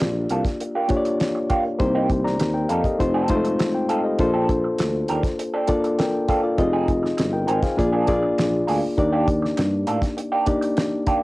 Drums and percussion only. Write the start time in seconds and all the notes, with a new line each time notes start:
0.00 snare, closed hi-hat
0.29 closed hi-hat
0.45 kick, snare, closed hi-hat
0.60 closed hi-hat
0.89 kick, closed hi-hat
1.05 closed hi-hat
1.20 snare, closed hi-hat
1.50 kick, closed hi-hat
1.80 kick, closed hi-hat
2.10 kick, closed hi-hat
2.27 snare
2.39 snare, closed hi-hat
2.69 closed hi-hat
2.84 kick, closed hi-hat
3.00 kick, closed hi-hat
3.28 kick, closed hi-hat
3.45 closed hi-hat
3.59 snare, closed hi-hat
3.89 closed hi-hat
4.19 kick, closed hi-hat
4.49 kick, closed hi-hat
4.78 snare, closed hi-hat
5.08 closed hi-hat
5.23 kick, snare, closed hi-hat
5.39 closed hi-hat
5.67 kick, closed hi-hat
5.84 closed hi-hat
5.99 snare, closed hi-hat
6.29 kick, closed hi-hat
6.58 kick, closed hi-hat
6.88 kick, closed hi-hat
7.05 snare
7.18 snare, closed hi-hat
7.48 closed hi-hat
7.63 kick, snare, closed hi-hat
7.79 kick, closed hi-hat
8.07 kick, closed hi-hat
8.38 snare, closed hi-hat
8.68 open hi-hat
8.98 kick, closed hi-hat
9.28 kick, closed hi-hat
9.45 snare
9.57 snare, closed hi-hat
9.87 closed hi-hat
10.02 kick, snare, closed hi-hat
10.18 closed hi-hat
10.46 kick, closed hi-hat
10.62 closed hi-hat
10.77 snare, closed hi-hat
11.07 kick, closed hi-hat